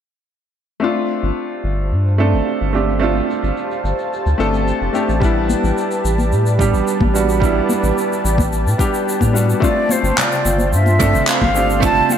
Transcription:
0.80 2.15 A3 medium
0.80 2.16 C4 medium
0.80 2.16 D4 medium
0.80 2.17 F4 medium
0.80 9.58 G4 medium
0.80 5.18 C5 medium
0.80 5.18 F5 medium
0.80 9.58 A5 medium
1.23 1.31 G1 medium
1.38 shaker soft
1.51 shaker soft
1.64 1.93 G1 medium
1.64 shaker medium
1.79 shaker soft
1.91 2.35 G2 medium
1.91 shaker soft
2.07 shaker soft
2.18 2.71 A3 medium
2.18 2.71 C4 medium
2.18 2.71 D4 medium
2.18 2.71 A4 medium
2.18 shaker medium
2.33 2.42 G1 medium
2.33 shaker soft
2.48 shaker medium
2.61 3.21 G1 medium
2.73 2.98 A3 medium
2.73 2.98 C4 medium
2.73 2.99 D4 medium
2.73 2.99 G4 medium
2.73 shaker medium
2.89 shaker soft
3.00 4.35 A3 medium
3.00 4.36 C4 medium
3.00 4.36 D4 medium
3.00 4.37 F4 medium
3.00 shaker soft
3.30 shaker medium
3.43 3.52 G1 medium
3.43 shaker soft
3.57 shaker medium
3.71 shaker soft
3.84 3.93 G1 medium
3.84 shaker medium
3.99 shaker soft
4.13 shaker soft
4.26 4.34 D2 medium
4.26 shaker soft
4.38 4.72 G1 medium
4.38 4.90 A3 medium
4.38 4.91 C4 medium
4.38 4.91 D4 medium
4.38 4.92 A4 medium
4.38 shaker medium
4.54 shaker soft
4.68 shaker medium
4.81 4.90 F1 medium
4.93 5.18 A3 medium
4.93 5.18 C4 medium
4.93 5.19 D4 medium
4.93 5.19 G4 medium
4.93 shaker medium
5.09 5.55 A1 medium
5.09 shaker soft
5.20 6.55 G3 medium
5.20 6.56 B3 medium
5.20 6.57 D4 medium
5.20 6.57 E4 loud
5.20 9.58 B4 medium
5.20 9.58 D5 medium
5.20 kick loud
5.20 shaker soft
5.49 high conga medium
5.49 shaker medium
5.64 5.72 A1 medium
5.64 shaker soft
5.78 shaker medium
5.91 shaker soft
6.04 6.33 A1 medium
6.04 shaker medium
6.18 high conga medium
6.18 shaker soft
6.32 6.75 A2 medium
6.32 shaker medium
6.46 shaker soft
6.59 7.11 G3 medium
6.59 7.11 B3 medium
6.59 7.12 D4 medium
6.59 7.12 G4 medium
6.59 kick loud
6.59 shaker medium
6.73 6.82 A1 loud
6.73 shaker soft
6.88 shaker medium
7.00 7.61 A1 medium
7.00 kick loud
7.00 high conga medium
7.14 7.38 G3 medium
7.14 7.39 B3 medium
7.14 7.39 D4 medium
7.14 7.39 F#4 medium
7.14 shaker medium
7.29 shaker soft
7.40 8.76 G3 medium
7.40 8.76 B3 medium
7.40 8.77 D4 medium
7.40 8.77 E4 medium
7.40 kick loud
7.40 shaker soft
7.69 high conga medium
7.69 shaker medium
7.83 7.92 A1 medium
7.83 shaker soft
7.98 shaker medium
8.13 shaker soft
8.25 8.68 A1 medium
8.25 shaker medium
8.38 kick loud
8.38 high conga medium
8.38 shaker soft
8.53 shaker medium
8.66 8.75 A2 medium
8.66 shaker soft
8.78 9.31 G3 medium
8.78 9.31 B3 medium
8.78 9.31 D4 medium
8.78 9.32 G4 medium
8.78 kick loud
8.78 shaker medium
8.94 shaker soft
9.09 shaker medium
9.21 9.54 A2 medium
9.21 kick medium
9.21 high conga loud
9.21 shaker soft
9.33 9.58 G3 medium
9.33 9.59 B3 medium
9.33 9.59 D4 medium
9.33 9.59 F#4 medium
9.33 shaker medium
9.50 shaker soft
9.60 10.96 A3 medium
9.60 10.96 C4 medium
9.60 10.97 D4 medium
9.60 12.18 F4 medium
9.60 10.98 F4 medium
9.60 12.18 C5 medium
9.60 12.18 G5 medium
9.60 12.18 A5 medium
9.60 kick loud
9.60 shaker soft
9.64 9.93 D5 medium
9.89 10.21 C5 medium
9.89 high conga medium
9.89 shaker medium
10.03 10.12 G1 medium
10.03 shaker soft
10.18 10.73 D5 medium
10.18 clap medium
10.18 mid tom medium
10.18 shaker medium
10.32 shaker soft
10.45 10.74 G1 medium
10.45 muted conga soft
10.45 shaker medium
10.58 high conga medium
10.58 shaker soft
10.72 11.15 G2 medium
10.72 11.31 E5 medium
10.72 shaker medium
10.86 muted conga soft
10.86 shaker soft
10.99 11.51 A3 medium
10.99 11.51 C4 medium
10.99 11.52 D4 medium
10.99 11.52 A4 medium
10.99 kick loud
10.99 mid tom medium
10.99 shaker medium
11.14 11.22 G1 medium
11.14 shaker soft
11.27 11.83 F5 loud
11.27 clap loud
11.27 shaker medium
11.41 12.02 G1 medium
11.41 kick medium
11.41 high conga medium
11.41 low conga medium
11.55 11.79 A3 medium
11.55 11.79 C4 medium
11.55 11.80 D4 medium
11.55 11.80 G4 medium
11.55 shaker medium
11.70 shaker soft
11.80 12.18 A3 medium
11.80 12.18 C4 medium
11.80 12.18 D4 medium
11.80 12.18 F4 loud
11.80 kick loud
11.80 mid tom medium
11.80 shaker medium
11.85 12.14 A5 loud
12.10 12.18 F5 loud
12.10 high conga medium
12.10 shaker medium

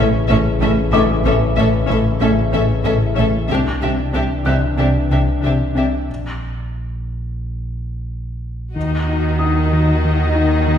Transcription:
0.00 3.52 A1 medium
0.00 0.17 A2 medium
0.00 3.45 C#3 medium
0.00 3.45 E3 medium
0.00 0.57 C#5 soft
0.00 0.57 C#6 soft
0.28 0.36 A1 medium
0.28 0.49 A2 medium
0.28 0.38 A2 medium
0.28 0.37 C#4 medium
0.28 0.37 A4 medium
0.28 0.36 E5 medium
0.61 0.69 A1 medium
0.61 0.70 A2 medium
0.61 0.81 A3 medium
0.61 0.69 C#4 soft
0.61 0.70 A4 soft
0.61 0.70 E5 soft
0.92 1.00 A1 medium
0.92 1.12 A2 medium
0.92 1.02 A2 medium
0.92 1.00 C#4 medium
0.92 1.03 A4 medium
0.92 1.01 E5 medium
0.92 2.80 D6 medium
1.23 1.31 A1 medium
1.23 1.44 A2 soft
1.23 1.33 A2 medium
1.23 1.34 C#4 medium
1.23 1.35 A4 soft
1.23 1.33 E5 soft
1.56 1.64 A1 medium
1.56 1.65 A2 medium
1.56 1.76 A2 medium
1.56 1.64 C#4 soft
1.56 1.67 A4 medium
1.56 1.64 E5 medium
1.88 1.96 A1 medium
1.88 1.96 A2 medium
1.88 2.08 A2 medium
1.88 1.96 C#4 soft
1.88 1.99 A4 soft
1.88 1.96 E5 soft
2.20 2.28 A1 medium
2.20 2.28 A2 medium
2.20 2.40 A2 medium
2.20 2.28 C#4 medium
2.20 2.30 A4 soft
2.20 2.29 E5 soft
2.52 2.60 A1 medium
2.52 2.60 A2 medium
2.52 2.72 A2 medium
2.52 2.60 C#4 soft
2.52 2.63 A4 soft
2.52 2.61 E5 soft
2.84 2.92 A1 medium
2.84 2.92 A2 soft
2.84 3.05 A2 medium
2.84 2.93 C#4 soft
2.84 2.93 A4 soft
2.84 2.93 E5 soft
3.16 3.25 A1 medium
3.16 3.24 A2 medium
3.16 3.37 A3 medium
3.16 3.24 C#4 soft
3.16 3.27 A4 soft
3.16 3.25 E5 soft
3.49 3.57 C2 medium
3.49 6.11 C2 medium
3.49 3.57 C3 medium
3.49 3.69 C3 medium
3.49 6.05 E3 medium
3.49 3.58 D4 soft
3.49 6.05 D4 medium
3.49 3.59 G4 soft
3.49 3.57 E5 soft
3.81 3.90 C2 soft
3.81 3.89 C3 soft
3.81 4.01 C3 soft
3.81 3.89 D4 soft
3.81 3.89 G4 soft
3.81 3.90 E5 soft
4.12 4.21 C2 soft
4.12 4.22 C3 soft
4.12 4.34 C3 medium
4.12 4.21 D4 soft
4.12 4.23 G4 soft
4.12 4.23 E5 soft
4.45 4.54 C2 soft
4.45 4.54 C3 soft
4.45 4.66 C3 medium
4.45 4.53 D4 soft
4.45 4.54 G4 soft
4.45 4.56 E5 soft
4.45 6.05 F#6 soft
4.77 4.85 C2 soft
4.77 4.97 C3 soft
4.77 4.86 C3 soft
4.77 4.85 D4 soft
4.77 4.86 G4 soft
4.77 4.87 E5 soft
5.10 5.18 C2 soft
5.10 5.30 C3 soft
5.10 5.19 C3 soft
5.10 5.19 D4 soft
5.10 5.19 G4 soft
5.10 5.19 E5 soft
5.42 5.50 C2 soft
5.42 5.63 C3 medium
5.42 5.52 C3 soft
5.42 5.51 D4 soft
5.42 5.53 G4 soft
5.42 5.51 E5 soft
5.75 5.83 C2 soft
5.75 5.84 C3 soft
5.75 5.95 C4 soft
5.75 5.83 D4 soft
5.75 5.86 G4 soft
5.75 5.85 E5 soft
6.09 8.76 A#1 medium
8.75 10.78 D#2 soft
8.75 10.78 D#2 medium
8.75 10.78 D#3 soft
8.75 8.95 D#3 medium
8.75 10.78 D#4 soft
8.75 10.78 F#4 soft
8.75 10.78 D#5 soft
9.08 9.27 D#4 soft
9.39 9.60 D#4 soft
9.39 10.78 D#6 soft
9.73 9.92 D#3 medium
10.05 10.24 D#3 soft
10.35 10.55 D#4 soft
10.68 10.78 D#3 medium

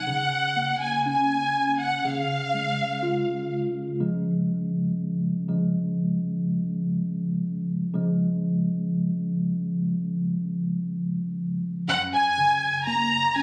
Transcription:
0.00 0.78 F#5 medium
0.07 2.00 C#3 medium
0.56 2.00 A#3 soft
0.82 1.05 G#5 medium
1.06 2.01 C#4 soft
1.06 1.76 G#5 medium
1.80 2.03 F#5 medium
2.05 3.97 C#3 medium
2.05 3.52 F5 medium
2.54 3.97 G#3 medium
3.03 3.98 F4 soft
4.00 4.66 C#3 soft
4.00 4.66 F3 soft
4.00 4.66 G#3 soft
5.49 5.94 C#3 soft
5.49 5.94 F3 soft
5.49 5.94 G#3 soft
7.94 11.84 C#3 soft
7.94 11.84 F3 soft
7.94 11.84 G#3 medium
11.88 13.43 F#2 medium
11.88 12.00 F#5 medium
12.13 12.82 G#5 loud
12.38 13.43 C#3 medium
12.87 13.43 A#3 medium
12.87 13.36 A#5 loud
13.36 13.43 C#4 medium
13.36 13.43 G#5 loud

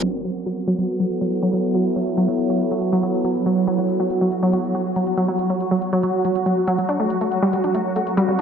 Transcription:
0.03 0.06 F#3 medium
0.03 6.89 F#3 medium
0.03 8.41 F#3 medium
0.03 8.41 F#4 medium
0.13 6.89 B3 medium
0.24 0.30 F#3 medium
0.24 6.89 A4 medium
0.35 closed hi-hat medium
0.46 0.49 F#3 medium
0.46 6.89 C#5 medium
0.46 closed hi-hat medium
0.66 0.73 F#3 loud
0.66 6.89 E4 medium
0.66 closed hi-hat medium
0.78 0.81 F#3 medium
0.78 closed hi-hat medium
0.89 closed hi-hat medium
1.00 1.05 F#3 medium
1.10 closed hi-hat medium
1.21 1.24 F#3 medium
1.21 closed hi-hat medium
1.32 closed hi-hat medium
1.43 1.48 F#3 medium
1.53 1.56 F#3 medium
1.53 closed hi-hat medium
1.64 closed hi-hat medium
1.74 1.80 F#3 medium
1.74 closed hi-hat medium
1.96 1.99 F#3 medium
1.96 closed hi-hat medium
2.07 closed hi-hat medium
2.17 2.23 F#3 medium
2.17 closed hi-hat medium
2.28 2.31 F#3 medium
2.39 closed hi-hat medium
2.50 2.55 F#3 medium
2.50 closed hi-hat medium
2.60 closed hi-hat medium
2.71 2.74 F#3 medium
2.82 closed hi-hat loud
2.92 2.98 F#3 loud
2.92 closed hi-hat medium
3.03 3.06 F#3 medium
3.03 closed hi-hat medium
3.24 3.30 F#3 medium
3.24 closed hi-hat medium
3.35 closed hi-hat medium
3.46 3.49 F#3 medium
3.46 closed hi-hat medium
3.67 3.73 F#3 medium
3.67 closed hi-hat medium
3.78 3.81 F#3 medium
3.78 closed hi-hat medium
3.89 closed hi-hat medium
4.00 4.05 F#3 medium
4.10 closed hi-hat medium
4.21 4.24 F#3 medium
4.21 closed hi-hat medium
4.32 closed hi-hat medium
4.43 4.48 F#3 loud
4.53 4.56 F#3 medium
4.53 closed hi-hat medium
4.64 closed hi-hat medium
4.75 4.80 F#3 medium
4.75 closed hi-hat medium
4.96 4.99 F#3 medium
4.96 closed hi-hat medium
5.07 closed hi-hat medium
5.17 5.23 F#3 medium
5.17 closed hi-hat medium
5.28 5.31 F#3 medium
5.39 closed hi-hat medium
5.50 5.55 F#3 medium
5.50 closed hi-hat medium
5.60 closed hi-hat medium
5.71 5.74 F#3 medium
5.82 closed hi-hat medium
5.93 5.98 F#3 loud
5.93 closed hi-hat medium
6.03 6.06 F#3 medium
6.03 closed hi-hat medium
6.25 6.30 F#3 medium
6.25 closed hi-hat medium
6.35 closed hi-hat medium
6.46 6.49 F#3 medium
6.46 closed hi-hat medium
6.67 6.73 F#3 loud
6.67 closed hi-hat medium
6.78 6.81 F#3 medium
6.78 closed hi-hat medium
6.89 6.94 D4 medium
6.89 closed hi-hat medium
7.00 7.05 A3 medium
7.10 closed hi-hat medium
7.21 7.24 A3 medium
7.21 closed hi-hat medium
7.26 8.41 C4 medium
7.32 closed hi-hat medium
7.39 7.48 G3 loud
7.39 8.41 A#4 medium
7.47 8.41 F5 medium
7.53 7.56 G3 medium
7.53 closed hi-hat medium
7.64 7.69 D4 medium
7.64 closed hi-hat medium
7.74 7.80 A3 medium
7.74 closed hi-hat medium
7.96 7.99 A3 medium
7.96 closed hi-hat medium
8.07 closed hi-hat medium
8.17 8.23 G3 loud
8.17 closed hi-hat medium
8.24 8.31 G3 medium
8.24 8.41 D5 medium

